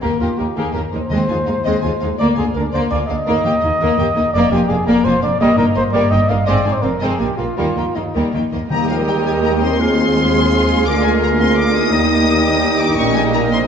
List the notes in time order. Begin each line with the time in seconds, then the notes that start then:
0.02 D#2 A#3 G4 A#4
0.19 D#2 A#3 F4 G4 D#5
0.37 D#2 A#3 D#4 G4 A#4
0.56 D#2 A#3 G4 G#4
0.74 D#2 A#3 G4 A#4 D#5
0.92 D#2 A#3 D#4 A#4 C5
1.10 D#2 D#3 G#3 C4 D#5
1.28 D#2 G#3 F4 G#5
1.46 D#2 G#3 D#4 F5
1.64 D#2 G#3 C4 D#5
1.82 D#2 G#3 F4 G#5
2.00 D#2 G#3 D#4 F5
2.19 D2 A#3 D5
2.36 D2 A#3 F4 G#4 G#5
2.55 D2 A#3 D4 A#4 F5
2.73 D2 A#3 C5 D5
2.91 D2 A#3 F4 D5 G#5
3.08 D2 A#3 D4 D#5 F5
3.26 D#2 A#3 A#4
3.44 D#2 A#3 G4 G5
3.61 D#2 A#3 D#4 D#5
3.80 D#2 A#3 A#4
3.98 D#2 A#3 G4 G5
4.16 D#2 A#3 D#4 D#5
4.34 F1 F2 A#3 D5
4.51 F1 F2 A#3 F4 G4 G#5
4.69 F1 F2 A#3 D4 G#4 F5
4.87 F1 F2 A#3 A#4 D5
5.04 F1 F2 A#3 F4 C5 G#5
5.22 F1 F2 A#3 D4 D5 F5
5.40 G1 G2 G3 A#3 A#4 D#5
5.56 G1 G2 A#3 D#4 A#4 G5
5.75 G1 G2 A#3 C5 D#5
5.93 G1 G2 G3 A#3 A#4 D5
6.10 G1 G2 A#3 D#4 D#5 G5
6.28 G1 G2 A#3 D#5 F5
6.46 G#1 G#2 G#3 C4 D5 D#5
6.65 G#1 G#2 C4 D#4 G#5
6.73 C5
6.82 F1 F2 C4 A#4 F5
7.00 F1 F2 G#3 C4 D#5
7.10 G#4
7.19 A#1 A#2 A#3 D4 G4 G#5
7.37 A#1 A#2 A#3 F4 F5
7.57 D#2 D#3 G3 A#3 F4 A#4
7.76 D#2 D#3 A#3 D#4 G5
7.95 D#2 D#3 A#3 D#4 D#5
8.14 D#2 D#3 G3 A#3 A#4
8.34 D#2 D#3 A#3 D#4 G5
8.52 D#2 D#3 A#3 D#5
8.69 D#2 D#3 G3 A#3 G4 A#4 D#5 G5 A#5 D#6
8.88 F3 F5
9.06 G3 G5
9.24 G#3 G#5
9.43 A#3 A#5
9.61 C4 C6
9.80 G#3 F4 G#4 C5 F5 C7
10.87 D2 A#3 D4 A#4 D6 A#6
11.04 G#3 G#5
11.23 A#3 A#5
11.40 C4 C6
11.57 D4 D6
11.75 D#4 D#6
11.92 D#2 G3 D#4 G4 D#5
12.80 D4 D6
12.98 A#1 A#2 A#3 C#4 A#4 C#6 A#6
13.15 G#3 G#5
13.34 A#3 A#5
13.52 C4 C6